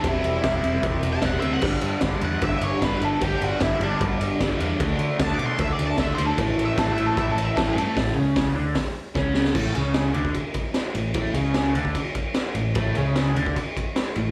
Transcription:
<<
  \new Staff \with { instrumentName = "Lead electric guitar" } { \time 4/4 \key a \mixolydian \tempo 4 = 151 e'2 \tuplet 3/2 { r4 a''8 fis''8 e''8 fis''8 } | r4. fis''8 e''8 cis''8 b'8 a'8 | g'8 fis'8 e'8 d'8 r2 | r4 \tuplet 3/2 { a''8 d'''8 c'''8 e''8 d''8 a''8 e''8 c''8 a'8 } |
\tuplet 3/2 { r4 e''8 a'8 e''8 a'8 e''8 a'8 e''8 a'8 a'4 } | r1 | r1 | r1 |
r1 | }
  \new Staff \with { instrumentName = "Overdriven electric guitar" } { \clef bass \time 4/4 \key a \mixolydian <c g c'>4 <c g c'>8 <c g c'>8 <c g c'>4 <c g c'>8 <c g c'>8 | <g, d g>4 <g, d g>8 <g, d g>8 <g, d g>4 <g, d g>8 <g, d g>8 | <g, d g>4 <g, d g>8 <g, d g>8 <g, d g>4 <g, d g>8 <g, d g>8 | <d a d'>4 <d a d'>8 <d a d'>8 <d a d'>4 <d a d'>8 <d a d'>8 |
<a, e a>4 <a, e a>8 <a, e a>8 <a, e a>4 <a, e a>8 <a, e a>8 | <a, a>8 <cis cis'>4 <d d'>8 r4 <cis cis'>4 | <a, a>8 <cis cis'>4 <d d'>8 r4. a,8 | <a, a>8 <cis cis'>4 <d d'>8 r4. a,8 |
<a, a>8 <cis cis'>4 <d d'>8 r4. a,8 | }
  \new Staff \with { instrumentName = "Picked electric bass" } { \clef bass \time 4/4 \key a \mixolydian e,,8 e,,8 e,,8 e,,8 e,,8 e,,8 e,,8 d,8 | g,,8 g,8 g,,8 e,8 g,,8 g,,8 g,,8 g,,8 | g,,8 g,,8 g,,8 g,,8 g,,8 g,,8 g,,8 e,8 | d,8 d8 d,8 b,8 d,8 d,8 d,8 d,8 |
a,,8 a,,8 a,,8 a,,8 a,,8 a,,8 a,,8 g,8 | a,,8 cis,4 d,8 r4 cis,4 | a,,8 cis,4 d,8 r4. a,,8 | a,,8 cis,4 d,8 r4. a,,8 |
a,,8 cis,4 d,8 r4. a,,8 | }
  \new DrumStaff \with { instrumentName = "Drums" } \drummode { \time 4/4 <bd cymr>8 cymr8 <bd cymr sn>8 cymr8 <bd cymr>8 cymr8 <bd cymr sn>8 cymr8 | <cymc bd>8 cymr8 <bd cymr sn>8 cymr8 <bd cymr>8 cymr8 <bd cymr sn>8 cymr8 | <bd cymr>8 cymr8 <bd cymr sn>8 cymr8 <bd cymr>8 cymr8 <bd cymr sn>8 cymr8 | <bd cymr>8 cymr8 <bd cymr sn>8 cymr8 <bd cymr>8 cymr8 <bd cymr sn>8 cymr8 |
<bd cymr>8 cymr8 <bd cymr sn>8 cymr8 <bd cymr>8 cymr8 <bd cymr sn>8 cymr8 | <hho bd sn>4 <hho bd sn>4 <hho bd sn>4 <bd sn>8 sn16 sn16 | <cymc bd>8 cymr8 <cymr sn>8 cymr16 bd16 <bd cymr>8 <bd cymr>8 <cymr sn>8 cymr8 | <bd cymr>8 cymr8 <cymr sn>8 cymr16 bd16 <bd cymr>8 <bd cymr>8 <cymr sn>8 cymr8 |
<bd cymr>8 cymr8 <cymr sn>8 cymr16 bd16 <bd cymr>8 <bd cymr>8 <cymr sn>8 cymr8 | }
>>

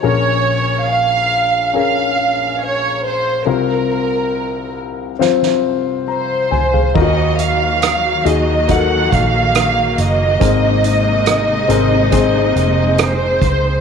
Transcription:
<<
  \new Staff \with { instrumentName = "Violin section" } { \time 4/4 \key ees \dorian \tempo 4 = 70 des''4 f''4 f''4 des''8 c''8 | bes'4. r4. c''4 | ees''8 f''4 ees''8 ges''8 f''4 ees''8~ | ees''2. c''4 | }
  \new Staff \with { instrumentName = "Grand piano" } { \time 4/4 \key ees \dorian << { r1 | r2. bes''8 <c'' aes''>16 <aes' f''>16~ | <aes' f''>16 r2. r8. | r1 | } \\ { <des' aes' bes'>2 <des' aes' bes'>2 | <c' f' bes'>2 <c' f' c''>2 | <ees' f' ges' bes'>4. <ees' ges' aes'>8 <ees' ges' a' bes'>2 | <c' aes' bes'>4. <c' aes' bes'>8 <c' aes' c''>2 | } >> }
  \new Staff \with { instrumentName = "Grand piano" } { \clef bass \time 4/4 \key ees \dorian <bes,, bes,>1 | <c, c>1 | ees4. r2 r8 | aes,4. r2 r8 | }
  \new Staff \with { instrumentName = "String section" } { \clef bass \time 4/4 \key ees \dorian << { r1 | r1 | <ees ges ges'>1 | <c aes ees'>1 | } \\ { r1 | r1 | bes1~ | bes1 | } >> }
  \new Staff \with { instrumentName = "Fingered electric bass" } { \clef bass \time 4/4 \key ees \dorian r1 | r1 | ees,4. ees,4 bes,,4 ges,,8 | aes,,4. aes,,4 f,,4 des,8 | }
  \new DrumStaff \with { instrumentName = "Drums" } \drummode { \time 4/4 r4 r4 r4 r4 | r4 r4 sn16 sn8. r8 tomfh16 tomfh16 | <cymc bd>8 hh8 <hh ss>8 hh8 <hh bd>8 <hh bd>8 <hh ss>8 hh8 | <hh bd>8 hh8 <hh ss>8 hh8 <hh bd>8 hh8 <hh ss>8 <hh bd>8 | }
>>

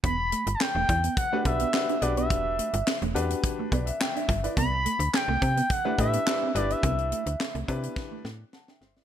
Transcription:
<<
  \new Staff \with { instrumentName = "Analog synth lead" } { \time 4/4 \key e \minor \tempo 4 = 106 b''8.~ b''32 a''32 g''4 fis''8 e''4 d''16 e''16~ | e''4~ e''16 r2 r8. | b''4 g''4 fis''8 e''4 d''16 e''16~ | e''4~ e''16 r2 r8. | }
  \new Staff \with { instrumentName = "Grand piano" } { \time 4/4 \key e \minor << { r1 | r2 r8 <b' d''>16 e''16 <e'' g''>16 e''8 <b' d''>16~ | <b' d''>16 r2. r8. | r2. <fis'' a''>16 <e'' g''>16 <c'' e''>16 <b' d''>16 | } \\ { r2 r16 <d' fis' g' b'>16 <d' fis' g' b'>16 r16 <d' fis' g' b'>16 r16 <d' fis' g' b'>8~ | <d' fis' g' b'>8. r8. <d' fis' g' b'>4~ <d' fis' g' b'>16 r4 r16 | r2 r16 <d' e' g' b'>16 <d' e' g' b'>16 r16 <d' e' g' b'>16 r16 <d' e' g' b'>8~ | <d' e' g' b'>8. r8. <d' e' g' b'>4~ <d' e' g' b'>16 r4 r16 | } >> }
  \new Staff \with { instrumentName = "Clean electric guitar" } { \time 4/4 \key e \minor b16 r16 a16 r8 a16 r16 b16 r16 a16 r16 b16 r16 d'16 r16 b16 | b16 r16 a16 r8 a16 r16 b16 r16 a16 b16 r8 d'16 r16 e'16 | b16 r16 a16 r8 a16 r16 b16 r16 a16 r16 b16 r16 c'16 r16 b16 | b16 r16 a16 r8 a16 r16 b16 r16 a16 b16 r8 d'16 r16 e'16 | }
  \new Staff \with { instrumentName = "FM bass" } { \clef bass \time 4/4 \key e \minor e,,8. g,,16 r16 e,,16 e,8 r8 b,,8 r8 b,,8 | e,,8. g,,16 r16 e,,16 e,8 r8 b,,8 r8 g,,8 | c,8. d,16 r16 c,16 c8 r8 a,8 r8 g,,8 | c,8. d,16 r16 c,16 c8 r8 a,8 r8 g,,8 | }
  \new DrumStaff \with { instrumentName = "Drums" } \drummode { \time 4/4 <hh bd>8 hh16 hh16 <hc sn>8 <hh bd>16 hh16 <hh bd>8 <hh bd>16 hh16 <hc sn>16 hh16 hh16 hh16 | <hh bd>8 hh16 hh16 <hc sn>16 hh16 hh16 hh16 <hh bd>8 <hh bd>16 hh16 <hc sn>16 hh16 <hh bd>16 hh16 | <hh bd>8 hh16 hh16 <hc sn>8 <hh bd>16 hh16 <hh bd>8 <hh bd>16 hh16 <hc sn>8 hh16 hh16 | <hh bd>16 hh16 hh16 hh16 <hc sn>16 hh16 <hh bd>16 hh16 <bd sn>8 sn8 sn16 sn16 sn16 sn16 | }
>>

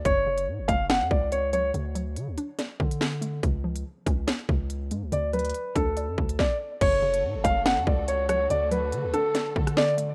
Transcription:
<<
  \new Staff \with { instrumentName = "Grand piano" } { \time 4/4 \key fis \minor \tempo 4 = 142 cis''4 r8 eis''8 fis''8 d''8 cis''8 cis''8 | r1 | r1 | d''8 b'4 a'4. d''8 r8 |
cis''4 r8 eis''8 fis''8 d''8 cis''8 cis''8 | d''8 b'4 a'4. d''8 r8 | }
  \new Staff \with { instrumentName = "String section" } { \time 4/4 \key fis \minor << { r1 | r1 | r1 | r1 |
<cis a'>1 | <d a'>1 | } \\ { r1 | r1 | r1 | r1 |
<a fis'>1~ | <a fis'>1 | } >> }
  \new Staff \with { instrumentName = "Synth pluck" } { \clef bass \time 4/4 \key fis \minor fis,8 cis4 a8 cis'8 fis,4 fis8 | d8 fis4 d'8 d''8 d4 a8 | cis8 eis4 cis'8 cis''8 cis4 gis8 | d8 fis4 d'8 d''8 d4. |
fis,8 cis4 a8 cis'8 fis,4 fis8 | d8 fis4 d'8 d''8 d4 a8 | }
  \new Staff \with { instrumentName = "808-style bass" } { \clef bass \time 4/4 \key fis \minor fis,,4 a,16 fis,,16 fis,,8. fis,16 cis,4. | d,4 d16 d,16 r4 d4. | cis,4 r8 cis,8 r8 cis,4 gis,16 cis,16 | d,4 r8 d,8. fis,16 d,8 r4 |
fis,,4 a,16 fis,,16 fis,,8. fis,16 cis,4. | d,4 d16 d,16 r4 d4. | }
  \new DrumStaff \with { instrumentName = "Drums" } \drummode { \time 4/4 <hh bd>8. hh16 r8 <hh bd>8 <hh sn>8 bd8 hh8 hh8 | hh8 hh8 hh8 hh8 <hh sn>8 bd16 hh16 sn8 hh8 | <hh bd>8. hh16 r8 <hh bd>8 <hh sn>8 bd8 hh8 hh8 | hh8 hh32 hh32 hh32 hh32 hh8 <hh bd>8 hh8 bd16 hh16 <bd sn>4 |
<cymc hh bd>8. hh16 r8 <hh bd>8 <hh sn>8 bd8 hh8 <hh ss>8 | hh8 hh8 hh8 hh8 <hh sn>8 bd16 <hh ss>16 sn8 hh8 | }
>>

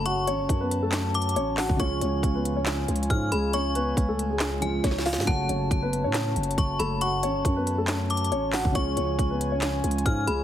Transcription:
<<
  \new Staff \with { instrumentName = "Synth bell" } { \time 4/4 \key fis \minor \tempo 4 = 138 cis'''4 r4. d'''8 r4 | cis'''4 r2 eis'''8 b''8 | cis'''4 r4. gis''8 r4 | a''4 r2 cis'''8 b''8 |
cis'''4 r4. d'''8 r4 | cis'''4 r2 eis'''8 b''8 | }
  \new Staff \with { instrumentName = "Brass ensemble" } { \time 4/4 \key fis \minor << { <fis' a''>1 | <eis' gis''>1~ | <eis' gis''>1 | <fis' a''>1~ |
<fis' a''>1 | <eis' gis''>1 | } \\ { cis''1~ | cis''1~ | cis''1~ | cis''1~ |
cis''1 | cis''1 | } >> }
  \new Staff \with { instrumentName = "Grand piano" } { \time 4/4 \key fis \minor <fis' fis''>8 <cis' cis''>8. <b b'>8 <a a'>4~ <a a'>16 <cis' cis''>8 <fis' fis''>8 | <cis' cis''>8 <cis' cis''>8. <b b'>8 <cis' cis''>4.~ <cis' cis''>16 <gis gis'>8 | <cis' cis''>8 <b b'>8. <a a'>8 <gis gis'>4~ <gis gis'>16 <cis' cis''>8 <eis' eis''>8 | <fis' fis''>8 <cis' cis''>8. <b b'>8 <cis' cis''>4.~ <cis' cis''>16 <a a'>8 |
<fis' fis''>8 <cis' cis''>8. <b b'>8 <a a'>4~ <a a'>16 <cis' cis''>8 <fis' fis''>8 | <cis' cis''>8 <cis' cis''>8. <b b'>8 <cis' cis''>4.~ <cis' cis''>16 <gis gis'>8 | }
  \new Staff \with { instrumentName = "Felt piano" } { \clef bass \time 4/4 \key fis \minor <cis fis a fis'>1 | <cis eis gis eis'>1~ | <cis eis gis eis'>2~ <cis eis gis eis'>8 <cis eis gis eis'>4. | <cis fis a fis'>1~ |
<cis fis a fis'>1 | <cis eis gis eis'>1 | }
  \new Staff \with { instrumentName = "808-style bass" } { \clef bass \time 4/4 \key fis \minor fis,,8 gis,,16 fis,,16 fis,2 a,,8. fis,,16 | cis,8 cis,8 cis,4. cis,8 gis,8 cis,8~ | cis,4 cis,2 cis,8. gis,16 | fis,,8 fis,,8 fis,,8. a,8. fis,,8 fis,,8 fis,,8~ |
fis,,8 gis,,16 fis,,16 fis,2 a,,8. fis,,16 | cis,8 cis,8 cis,4. cis,8 gis,8 cis,8 | }
  \new DrumStaff \with { instrumentName = "Drums" } \drummode { \time 4/4 hh8 hh8 <hh bd>8 hh8 \tuplet 3/2 { <hc hh sn>16 r16 r16 hh16 hh16 hh16 } hh8 <hc hho sn>16 bd16 | <hh bd>8 hh8 <hh bd>8 hh8 \tuplet 3/2 { <hc hh sn>16 r16 r16 hh16 hh16 hh16 } <hh bd>8 hh8 | hh8 hh8 <hh bd>8 hh8 <hc hh sn>8 hh8 \tuplet 3/2 { <hh bd sn>16 sn16 sn16 <hho sn>16 sn16 sn16 } | <hh bd>8 hh8 <hh bd>8 hh8 \tuplet 3/2 { <hc hh sn>16 r16 r16 hh16 hh16 hh16 } <hh bd>8 hh8 |
hh8 hh8 <hh bd>8 hh8 \tuplet 3/2 { <hc hh sn>16 r16 r16 hh16 hh16 hh16 } hh8 <hc hho sn>16 bd16 | <hh bd>8 hh8 <hh bd>8 hh8 \tuplet 3/2 { <hc hh sn>16 r16 r16 hh16 hh16 hh16 } <hh bd>8 hh8 | }
>>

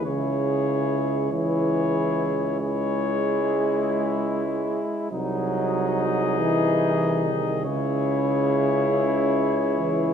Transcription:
<<
  \new Staff \with { instrumentName = "Cornet" } { \time 12/8 \key cis \minor \tempo 4. = 47 cis''4. cis''4. cis''2~ cis''8 r8 | dis''2. cis''2. | }
  \new Staff \with { instrumentName = "Flugelhorn" } { \time 12/8 \key cis \minor gis'4. gis'4. gis'2~ gis'8 r8 | gis'2. gis'2. | }
  \new Staff \with { instrumentName = "Trombone section" } { \time 12/8 \key cis \minor e'4. e'4. e'2. | dis'2. e'2. | }
  \new Staff \with { instrumentName = "Trombone" } { \clef bass \time 12/8 \key cis \minor cis4. e4 r8 gis2. | fis4. e4 dis8 cis2~ cis8 e8 | }
  \new Staff \with { instrumentName = "Tuba" } { \clef bass \time 12/8 \key cis \minor cis,1~ cis,4. r8 | bis,,2. cis,2. | }
>>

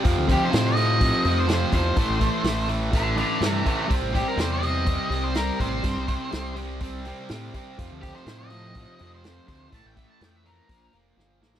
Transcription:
<<
  \new Staff \with { instrumentName = "Lead electric guitar" } { \time 4/4 \key c \mixolydian \tempo 4 = 124 r8 g'16 c''16 c''16 ees''4. c''16 c''8 c''8~ | c''4. r8 <a' d''>8 <a' d''>8 <g' c''>8 <g' c''>8 | r8 g'16 bes'16 c''16 ees''4. c''16 bes'8 c''8~ | c''4. r2 r8 |
r8 g'16 c''16 c''16 ees''4. c''16 c''8 c''8 | a''16 g''16 e''16 a''16 g''16 e''16 bes'4 r4. | }
  \new Staff \with { instrumentName = "Distorted electric guitar" } { \clef bass \time 4/4 \key c \mixolydian <f, c f>8 <f, c f>8 <f, c f>8 <f, c f>8 <f, c f>8 <f, c f>8 <f, c f>8 <f, c f>8 | <a, e a>8 <a, e a>8 <a, e a>8 <a, e a>8 <a, e a>8 <a, e a>8 <a, e a>8 <a, e a>8 | <c g c'>8 <c g c'>8 <c g c'>8 <c g c'>8 <c g c'>8 <c g c'>8 <c g c'>8 <c g c'>8 | <c g c'>8 <c g c'>8 <c g c'>8 <c g c'>8 <c g c'>8 <c g c'>8 <c g c'>8 <c g c'>8 |
<f, c f>8 <f, c f>8 <f, c f>8 <f, c f>8 <f, c f>8 <f, c f>8 <f, c f>8 <f, c f>8 | <a, e a>8 <a, e a>8 <a, e a>8 <a, e a>8 <bes, f bes>8 <bes, f bes>8 <bes, f bes>8 <bes, f bes>8 | }
  \new Staff \with { instrumentName = "Fingered electric bass" } { \clef bass \time 4/4 \key c \mixolydian f,16 d,8 r16 a,4. f,4 e,8 | a,,16 a,,8 r16 a,,2 g,8 r8 | c,16 a,,8 r16 e,4. c,4 a,,8 | g,16 c,8 r16 c,2 a,8 r8 |
f,16 d,8 r16 a,4. f,4 d,8 | a,,16 a,,8 r16 f,4 bes,,8 f,,8 g,,8 a,,8 | }
  \new DrumStaff \with { instrumentName = "Drums" } \drummode { \time 4/4 <hho bd>8 <hho bd>8 <hho sn>8 hho8 <hho bd>8 hho8 <hho sn>8 <hho bd>8 | <hho bd>8 <hho bd>8 <hho sn>8 hho8 <hho bd>8 hho8 <hho sn>8 <hho bd>8 | <hho bd>8 <hho bd>8 <hho sn>8 hho8 <hho bd>8 hho8 <hho sn>8 <hho bd>8 | <hho bd>8 <hho bd>8 <hho sn>8 hho8 <hho bd>8 hho8 <hho sn>8 <hho bd>8 |
<hho bd>8 <hho bd>16 sn16 <hho sn>8 hho8 <hho bd>8 hho8 <hho sn>8 <hho bd>8 | <hho bd>8 <hho bd>8 <hho sn>8 hho8 <hho bd>8 hho8 sn8 sn16 sn16 | }
>>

